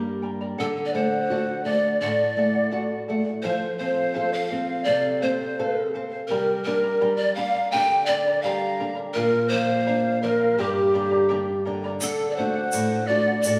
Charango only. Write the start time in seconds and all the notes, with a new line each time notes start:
Already playing: G4 A#4 D5 G5 A#5
0.22 A#4 D5 G5 A#5
0.41 A#4 D5 A#5
0.58 A4 D5 F#5
0.94 A4 D5 F#5
1.11 D5 F#5
1.31 A4 D5 F#5
1.66 A4 D5 F#5
1.83 D5 F#5
2.02 A4 D5 F#5
2.38 A4 D5 F#5
2.55 D5 F#5
2.71 A4 D5 F#5
3.08 A4 D5 F#5
3.25 D5 F#5
3.44 A4 C5 F5
3.79 A4 C5 F5
3.96 C5 F5
4.14 A4 C5 F5
4.50 A4 C5 F5
4.68 C5 F5
4.85 A4 C5 F5
5.20 A4 C5 F5
5.41 C5 F5
5.59 A4 C5 F5
5.94 A4 C5 F5
6.11 C5 F5
6.30 G4 A#4 D5 G5 A#5
6.65 A#4 D5 G5 A#5
6.83 A#4 D5 A#5
7.01 G4 A#4 D5 G5 A#5
7.36 A#4 D5 G5 A#5
7.55 A#4 D5 A#5
7.72 G4 A#4 D5 G5 A#5
8.08 A#4 D5 G5 A#5
8.26 A#4 D5 A#5
8.44 G4 A#4 D5 G5 A#5
8.79 A#4 D5 G5 A#5
8.95 A#4 D5 A#5
9.15 A#4 D5 F5
9.51 A#4 D5 F5
9.69 D5 F5
9.87 A#4 D5 F5
10.22 A#4 D5 F5
10.41 D5 F5
10.58 G4 A#4 D5 G5 A#5
10.93 A#4 D5 G5 A#5
11.11 A#4 D5 A#5
11.29 G4 A#4 D5 G5 A#5
11.65 A#4 D5 G5 A#5
11.84 A#4 D5 A#5
12.01 A4 D5 F#5
12.37 A4 D5 F#5
12.55 D5 F#5
12.73 A4 D5 F#5
13.10 A4 D5 F#5
13.28 D5 F#5
13.46 A4 D5 F#5